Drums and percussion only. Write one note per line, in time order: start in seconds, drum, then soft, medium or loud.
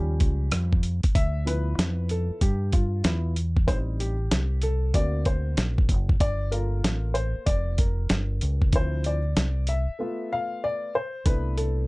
0.20 kick medium
0.20 closed hi-hat medium
0.52 cross-stick loud
0.52 closed hi-hat medium
0.73 kick medium
0.83 closed hi-hat medium
1.03 kick medium
1.03 closed hi-hat medium
1.15 kick loud
1.15 closed hi-hat loud
1.47 closed hi-hat medium
1.79 snare loud
1.79 closed hi-hat loud
2.09 closed hi-hat medium
2.41 kick medium
2.41 closed hi-hat medium
2.72 kick medium
2.72 closed hi-hat medium
3.04 snare loud
3.04 closed hi-hat medium
3.36 closed hi-hat medium
3.57 kick medium
3.68 kick loud
3.68 closed hi-hat loud
4.00 closed hi-hat medium
4.31 snare loud
4.31 closed hi-hat medium
4.62 closed hi-hat medium
4.94 kick medium
4.94 closed hi-hat medium
5.25 kick medium
5.25 closed hi-hat medium
5.57 snare loud
5.57 closed hi-hat medium
5.78 kick medium
5.89 kick medium
5.89 closed hi-hat medium
6.09 kick medium
6.20 kick loud
6.20 closed hi-hat loud
6.52 closed hi-hat medium
6.84 snare loud
6.84 closed hi-hat medium
7.15 closed hi-hat medium
7.47 kick medium
7.47 closed hi-hat medium
7.78 kick medium
7.78 closed hi-hat medium
8.09 snare loud
8.09 closed hi-hat medium
8.41 closed hi-hat medium
8.62 kick medium
8.73 kick loud
8.73 closed hi-hat loud
9.04 closed hi-hat medium
9.37 snare loud
9.37 closed hi-hat loud
9.67 closed hi-hat medium
11.26 kick loud
11.26 closed hi-hat loud
11.58 closed hi-hat medium